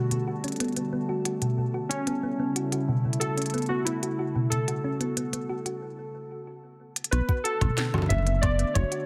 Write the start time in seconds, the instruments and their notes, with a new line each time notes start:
Already playing: ambient pad D3 G3 A3 B3 F#4, synth keys F#4, synth texture A4 A5
0.11 synth arpeggio sound B2, closed hi-hat
0.28 synth arpeggio sound F#4
0.44 synth arpeggio sound C#4, closed hi-hat
0.48 closed hi-hat
0.52 closed hi-hat
0.56 closed hi-hat
0.60 synth arpeggio sound B3, closed hi-hat
0.68 closed hi-hat
0.72 closed hi-hat
0.76 synth arpeggio sound B3, closed hi-hat
0.93 synth arpeggio sound B3
1.09 synth arpeggio sound F#4
1.25 synth arpeggio sound F#4, closed hi-hat
1.42 synth arpeggio sound B2, closed hi-hat
1.58 synth arpeggio sound B2
1.74 synth arpeggio sound F#4
1.89 ambient pad C#3 A3 E4, synth keys C#4, synth arpeggio sound C#4, closed hi-hat
2.07 synth arpeggio sound B3, closed hi-hat
2.23 synth arpeggio sound B3
2.40 synth arpeggio sound B3
2.56 synth arpeggio sound F#4, closed hi-hat
2.72 synth arpeggio sound F#4, closed hi-hat
2.88 synth arpeggio sound B2
3.05 synth arpeggio sound B2
3.13 closed hi-hat
3.20 synth arpeggio sound F#4, synth keys A4, closed hi-hat
3.37 synth arpeggio sound C#4, closed hi-hat
3.42 closed hi-hat
3.46 closed hi-hat
3.50 synth arpeggio sound B3, closed hi-hat
3.54 closed hi-hat
3.58 closed hi-hat
3.62 closed hi-hat
3.66 synth arpeggio sound B3, synth keys F#4, closed hi-hat
3.85 synth arpeggio sound B3, synth keys E4, closed hi-hat
4.03 synth arpeggio sound F#4, closed hi-hat
4.19 synth arpeggio sound F#4
4.35 synth arpeggio sound B2
4.50 synth arpeggio sound B2, ambient pad F#4, synth keys A4, closed hi-hat
4.68 synth arpeggio sound F#4, closed hi-hat
4.84 synth arpeggio sound C#4
5.01 synth arpeggio sound B3, closed hi-hat
5.17 synth arpeggio sound B3, closed hi-hat
5.33 synth arpeggio sound B3, closed hi-hat
5.49 synth arpeggio sound F#4
5.66 synth arpeggio sound F#4, closed hi-hat
6.96 closed hi-hat
7.04 closed hi-hat
7.11 acid bass B1, ambient pad D3 A3 B3 D4, synth arpeggio sound B3, synth keys B4, closed hi-hat, high woodblock
7.29 synth arpeggio sound F#4, kick, closed hi-hat
7.44 synth arpeggio sound F#4, synth keys A4, closed hi-hat
7.61 acid bass A1, synth arpeggio sound B2, kick, closed hi-hat, high woodblock
7.78 synth arpeggio sound B2, snare, closed hi-hat
7.94 synth arpeggio sound F#4, low conga, high woodblock
7.98 low conga
8.02 low conga
8.06 synth keys E5, low conga
8.10 acid bass F#1, synth arpeggio sound C#4, kick, closed hi-hat, low conga
8.14 low conga
8.18 low conga
8.23 low conga
8.27 synth arpeggio sound B3, closed hi-hat
8.41 synth arpeggio sound B3, synth keys D5, kick, closed hi-hat, high woodblock
8.59 synth arpeggio sound B3, closed hi-hat
8.74 acid bass F#1, synth arpeggio sound F#4, synth keys C#5, kick, closed hi-hat, high woodblock
8.92 synth arpeggio sound F#4, closed hi-hat